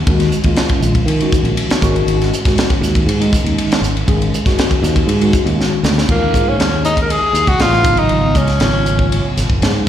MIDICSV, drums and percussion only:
0, 0, Header, 1, 2, 480
1, 0, Start_track
1, 0, Tempo, 502934
1, 61, Time_signature, 4, 2, 24, 8
1, 9436, End_track
2, 0, Start_track
2, 0, Title_t, "Drums"
2, 66, Note_on_c, 9, 36, 95
2, 67, Note_on_c, 9, 51, 68
2, 162, Note_off_c, 9, 36, 0
2, 163, Note_off_c, 9, 51, 0
2, 189, Note_on_c, 9, 51, 57
2, 198, Note_on_c, 9, 38, 26
2, 284, Note_off_c, 9, 51, 0
2, 294, Note_off_c, 9, 38, 0
2, 303, Note_on_c, 9, 44, 78
2, 398, Note_off_c, 9, 44, 0
2, 416, Note_on_c, 9, 51, 61
2, 424, Note_on_c, 9, 36, 72
2, 512, Note_off_c, 9, 51, 0
2, 520, Note_off_c, 9, 36, 0
2, 538, Note_on_c, 9, 51, 72
2, 548, Note_on_c, 9, 38, 102
2, 634, Note_off_c, 9, 51, 0
2, 643, Note_off_c, 9, 38, 0
2, 660, Note_on_c, 9, 51, 57
2, 665, Note_on_c, 9, 36, 79
2, 756, Note_off_c, 9, 51, 0
2, 761, Note_off_c, 9, 36, 0
2, 784, Note_on_c, 9, 44, 81
2, 879, Note_off_c, 9, 44, 0
2, 906, Note_on_c, 9, 36, 74
2, 907, Note_on_c, 9, 51, 55
2, 1002, Note_off_c, 9, 36, 0
2, 1002, Note_off_c, 9, 51, 0
2, 1030, Note_on_c, 9, 51, 79
2, 1126, Note_off_c, 9, 51, 0
2, 1150, Note_on_c, 9, 51, 54
2, 1245, Note_off_c, 9, 51, 0
2, 1264, Note_on_c, 9, 36, 82
2, 1271, Note_on_c, 9, 44, 78
2, 1360, Note_off_c, 9, 36, 0
2, 1367, Note_off_c, 9, 44, 0
2, 1382, Note_on_c, 9, 51, 48
2, 1478, Note_off_c, 9, 51, 0
2, 1501, Note_on_c, 9, 51, 78
2, 1596, Note_off_c, 9, 51, 0
2, 1625, Note_on_c, 9, 51, 59
2, 1635, Note_on_c, 9, 38, 108
2, 1721, Note_off_c, 9, 51, 0
2, 1730, Note_off_c, 9, 38, 0
2, 1740, Note_on_c, 9, 36, 87
2, 1741, Note_on_c, 9, 44, 80
2, 1835, Note_off_c, 9, 36, 0
2, 1837, Note_off_c, 9, 44, 0
2, 1869, Note_on_c, 9, 51, 55
2, 1964, Note_off_c, 9, 51, 0
2, 1985, Note_on_c, 9, 51, 70
2, 2080, Note_off_c, 9, 51, 0
2, 2114, Note_on_c, 9, 51, 49
2, 2124, Note_on_c, 9, 38, 25
2, 2210, Note_off_c, 9, 51, 0
2, 2219, Note_off_c, 9, 38, 0
2, 2228, Note_on_c, 9, 44, 78
2, 2323, Note_off_c, 9, 44, 0
2, 2342, Note_on_c, 9, 36, 79
2, 2348, Note_on_c, 9, 51, 60
2, 2357, Note_on_c, 9, 38, 33
2, 2437, Note_off_c, 9, 36, 0
2, 2443, Note_off_c, 9, 51, 0
2, 2453, Note_off_c, 9, 38, 0
2, 2461, Note_on_c, 9, 51, 80
2, 2471, Note_on_c, 9, 38, 99
2, 2557, Note_off_c, 9, 51, 0
2, 2566, Note_off_c, 9, 38, 0
2, 2578, Note_on_c, 9, 36, 75
2, 2579, Note_on_c, 9, 51, 61
2, 2674, Note_off_c, 9, 36, 0
2, 2674, Note_off_c, 9, 51, 0
2, 2702, Note_on_c, 9, 44, 81
2, 2712, Note_on_c, 9, 38, 28
2, 2798, Note_off_c, 9, 44, 0
2, 2807, Note_off_c, 9, 38, 0
2, 2818, Note_on_c, 9, 36, 74
2, 2826, Note_on_c, 9, 51, 58
2, 2914, Note_off_c, 9, 36, 0
2, 2921, Note_off_c, 9, 51, 0
2, 2946, Note_on_c, 9, 51, 86
2, 3042, Note_off_c, 9, 51, 0
2, 3068, Note_on_c, 9, 51, 60
2, 3164, Note_off_c, 9, 51, 0
2, 3177, Note_on_c, 9, 36, 80
2, 3183, Note_on_c, 9, 44, 78
2, 3272, Note_off_c, 9, 36, 0
2, 3278, Note_off_c, 9, 44, 0
2, 3306, Note_on_c, 9, 51, 59
2, 3401, Note_off_c, 9, 51, 0
2, 3420, Note_on_c, 9, 51, 83
2, 3516, Note_off_c, 9, 51, 0
2, 3547, Note_on_c, 9, 51, 65
2, 3557, Note_on_c, 9, 38, 108
2, 3642, Note_off_c, 9, 51, 0
2, 3652, Note_off_c, 9, 38, 0
2, 3662, Note_on_c, 9, 44, 79
2, 3757, Note_off_c, 9, 44, 0
2, 3786, Note_on_c, 9, 51, 49
2, 3881, Note_off_c, 9, 51, 0
2, 3893, Note_on_c, 9, 36, 85
2, 3900, Note_on_c, 9, 51, 66
2, 3989, Note_off_c, 9, 36, 0
2, 3995, Note_off_c, 9, 51, 0
2, 4025, Note_on_c, 9, 51, 53
2, 4120, Note_off_c, 9, 51, 0
2, 4141, Note_on_c, 9, 44, 80
2, 4237, Note_off_c, 9, 44, 0
2, 4256, Note_on_c, 9, 36, 69
2, 4262, Note_on_c, 9, 51, 56
2, 4271, Note_on_c, 9, 38, 30
2, 4351, Note_off_c, 9, 36, 0
2, 4357, Note_off_c, 9, 51, 0
2, 4367, Note_off_c, 9, 38, 0
2, 4376, Note_on_c, 9, 51, 84
2, 4386, Note_on_c, 9, 38, 106
2, 4472, Note_off_c, 9, 51, 0
2, 4481, Note_off_c, 9, 38, 0
2, 4493, Note_on_c, 9, 36, 76
2, 4497, Note_on_c, 9, 51, 62
2, 4589, Note_off_c, 9, 36, 0
2, 4592, Note_off_c, 9, 51, 0
2, 4615, Note_on_c, 9, 44, 80
2, 4624, Note_on_c, 9, 38, 29
2, 4710, Note_off_c, 9, 44, 0
2, 4720, Note_off_c, 9, 38, 0
2, 4732, Note_on_c, 9, 36, 70
2, 4738, Note_on_c, 9, 51, 57
2, 4828, Note_off_c, 9, 36, 0
2, 4833, Note_off_c, 9, 51, 0
2, 4855, Note_on_c, 9, 51, 80
2, 4950, Note_off_c, 9, 51, 0
2, 4976, Note_on_c, 9, 51, 58
2, 5072, Note_off_c, 9, 51, 0
2, 5089, Note_on_c, 9, 44, 76
2, 5090, Note_on_c, 9, 36, 81
2, 5184, Note_off_c, 9, 44, 0
2, 5185, Note_off_c, 9, 36, 0
2, 5216, Note_on_c, 9, 51, 53
2, 5312, Note_off_c, 9, 51, 0
2, 5350, Note_on_c, 9, 38, 56
2, 5446, Note_off_c, 9, 38, 0
2, 5571, Note_on_c, 9, 44, 70
2, 5581, Note_on_c, 9, 38, 78
2, 5667, Note_off_c, 9, 44, 0
2, 5676, Note_off_c, 9, 38, 0
2, 5710, Note_on_c, 9, 38, 69
2, 5805, Note_off_c, 9, 38, 0
2, 5812, Note_on_c, 9, 36, 83
2, 5816, Note_on_c, 9, 49, 69
2, 5907, Note_off_c, 9, 36, 0
2, 5912, Note_off_c, 9, 49, 0
2, 6052, Note_on_c, 9, 36, 68
2, 6060, Note_on_c, 9, 44, 78
2, 6060, Note_on_c, 9, 51, 55
2, 6147, Note_off_c, 9, 36, 0
2, 6155, Note_off_c, 9, 44, 0
2, 6155, Note_off_c, 9, 51, 0
2, 6298, Note_on_c, 9, 51, 78
2, 6307, Note_on_c, 9, 38, 95
2, 6393, Note_off_c, 9, 51, 0
2, 6403, Note_off_c, 9, 38, 0
2, 6534, Note_on_c, 9, 44, 66
2, 6534, Note_on_c, 9, 51, 52
2, 6630, Note_off_c, 9, 44, 0
2, 6630, Note_off_c, 9, 51, 0
2, 6653, Note_on_c, 9, 36, 62
2, 6658, Note_on_c, 9, 51, 60
2, 6748, Note_off_c, 9, 36, 0
2, 6754, Note_off_c, 9, 51, 0
2, 6778, Note_on_c, 9, 51, 84
2, 6873, Note_off_c, 9, 51, 0
2, 7012, Note_on_c, 9, 44, 74
2, 7012, Note_on_c, 9, 51, 60
2, 7108, Note_off_c, 9, 44, 0
2, 7108, Note_off_c, 9, 51, 0
2, 7133, Note_on_c, 9, 36, 63
2, 7139, Note_on_c, 9, 51, 52
2, 7229, Note_off_c, 9, 36, 0
2, 7234, Note_off_c, 9, 51, 0
2, 7248, Note_on_c, 9, 51, 74
2, 7258, Note_on_c, 9, 38, 99
2, 7344, Note_off_c, 9, 51, 0
2, 7353, Note_off_c, 9, 38, 0
2, 7380, Note_on_c, 9, 38, 27
2, 7475, Note_off_c, 9, 38, 0
2, 7485, Note_on_c, 9, 44, 76
2, 7485, Note_on_c, 9, 51, 51
2, 7488, Note_on_c, 9, 36, 92
2, 7581, Note_off_c, 9, 44, 0
2, 7581, Note_off_c, 9, 51, 0
2, 7584, Note_off_c, 9, 36, 0
2, 7608, Note_on_c, 9, 51, 50
2, 7703, Note_off_c, 9, 51, 0
2, 7723, Note_on_c, 9, 51, 58
2, 7818, Note_off_c, 9, 51, 0
2, 7968, Note_on_c, 9, 44, 76
2, 7968, Note_on_c, 9, 51, 55
2, 7969, Note_on_c, 9, 36, 67
2, 8063, Note_off_c, 9, 44, 0
2, 8063, Note_off_c, 9, 51, 0
2, 8065, Note_off_c, 9, 36, 0
2, 8088, Note_on_c, 9, 51, 57
2, 8098, Note_on_c, 9, 38, 30
2, 8184, Note_off_c, 9, 51, 0
2, 8193, Note_off_c, 9, 38, 0
2, 8208, Note_on_c, 9, 51, 68
2, 8217, Note_on_c, 9, 38, 87
2, 8303, Note_off_c, 9, 51, 0
2, 8313, Note_off_c, 9, 38, 0
2, 8457, Note_on_c, 9, 44, 67
2, 8457, Note_on_c, 9, 51, 47
2, 8552, Note_off_c, 9, 44, 0
2, 8552, Note_off_c, 9, 51, 0
2, 8579, Note_on_c, 9, 36, 72
2, 8675, Note_off_c, 9, 36, 0
2, 8705, Note_on_c, 9, 51, 72
2, 8801, Note_off_c, 9, 51, 0
2, 8947, Note_on_c, 9, 44, 70
2, 8947, Note_on_c, 9, 51, 54
2, 8956, Note_on_c, 9, 38, 27
2, 9042, Note_off_c, 9, 44, 0
2, 9042, Note_off_c, 9, 51, 0
2, 9052, Note_off_c, 9, 38, 0
2, 9063, Note_on_c, 9, 36, 62
2, 9158, Note_off_c, 9, 36, 0
2, 9183, Note_on_c, 9, 51, 73
2, 9193, Note_on_c, 9, 38, 90
2, 9279, Note_off_c, 9, 51, 0
2, 9288, Note_off_c, 9, 38, 0
2, 9436, End_track
0, 0, End_of_file